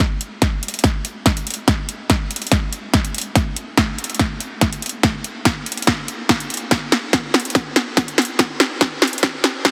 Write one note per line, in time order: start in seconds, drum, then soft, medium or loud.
0.21 closed hi-hat medium
0.42 kick medium
0.42 snare soft
0.42 closed hi-hat medium
0.63 closed hi-hat soft
0.68 closed hi-hat medium
0.74 closed hi-hat soft
0.79 closed hi-hat medium
0.84 kick medium
0.84 snare soft
0.84 closed hi-hat medium
1.05 closed hi-hat medium
1.26 kick loud
1.26 snare soft
1.26 closed hi-hat medium
1.37 closed hi-hat medium
1.47 closed hi-hat medium
1.50 closed hi-hat medium
1.54 closed hi-hat medium
1.68 kick medium
1.68 snare medium
1.68 closed hi-hat medium
1.89 closed hi-hat medium
2.10 kick loud
2.10 snare medium
2.10 closed hi-hat medium
2.31 closed hi-hat soft
2.36 closed hi-hat medium
2.42 closed hi-hat soft
2.47 closed hi-hat medium
2.52 kick medium
2.52 snare medium
2.52 closed hi-hat medium
2.73 closed hi-hat medium
2.94 kick medium
2.94 snare medium
2.94 closed hi-hat medium
3.05 closed hi-hat medium
3.15 closed hi-hat soft
3.18 closed hi-hat medium
3.21 closed hi-hat medium
3.35 kick loud
3.35 snare medium
3.35 closed hi-hat medium
3.56 closed hi-hat medium
3.77 kick medium
3.77 snare medium
3.77 closed hi-hat medium
3.98 closed hi-hat soft
4.04 closed hi-hat medium
4.10 closed hi-hat soft
4.15 closed hi-hat medium
4.19 kick medium
4.19 snare medium
4.19 closed hi-hat medium
4.40 closed hi-hat medium
4.61 kick medium
4.61 snare medium
4.61 closed hi-hat medium
4.73 closed hi-hat medium
4.82 closed hi-hat soft
4.86 closed hi-hat medium
4.89 closed hi-hat medium
5.03 kick loud
5.03 snare medium
5.03 closed hi-hat medium
5.24 closed hi-hat medium
5.45 kick medium
5.45 snare medium
5.45 closed hi-hat medium
5.66 closed hi-hat soft
5.72 closed hi-hat medium
5.77 closed hi-hat soft
5.82 closed hi-hat medium
5.87 kick medium
5.87 snare medium
5.87 closed hi-hat medium
6.08 closed hi-hat medium
6.29 kick loud
6.29 snare medium
6.29 closed hi-hat medium
6.40 closed hi-hat medium
6.50 closed hi-hat soft
6.54 closed hi-hat medium
6.57 closed hi-hat medium
6.71 kick loud
6.71 snare medium
6.71 closed hi-hat medium
6.92 snare medium
6.92 closed hi-hat medium
7.13 kick medium
7.13 snare medium
7.13 closed hi-hat medium
7.34 snare medium
7.34 closed hi-hat soft
7.40 closed hi-hat medium
7.45 closed hi-hat soft
7.50 closed hi-hat medium
7.55 kick loud
7.55 snare medium
7.55 closed hi-hat medium
7.76 snare medium
7.76 closed hi-hat medium
7.97 kick loud
7.97 snare medium
7.97 closed hi-hat medium
8.08 closed hi-hat medium
8.18 snare medium
8.18 closed hi-hat soft
8.22 closed hi-hat medium
8.25 closed hi-hat medium
8.39 kick medium
8.39 snare medium
8.39 closed hi-hat medium
8.60 snare medium
8.60 closed hi-hat medium
8.81 kick medium
8.81 snare medium
8.81 closed hi-hat medium
9.02 snare medium
9.02 closed hi-hat soft
9.07 closed hi-hat medium
9.13 closed hi-hat soft
9.18 closed hi-hat medium
9.23 kick loud
9.23 snare medium
9.23 closed hi-hat medium
9.44 snare medium
9.44 closed hi-hat medium
9.65 kick loud
9.65 snare medium
9.65 closed hi-hat medium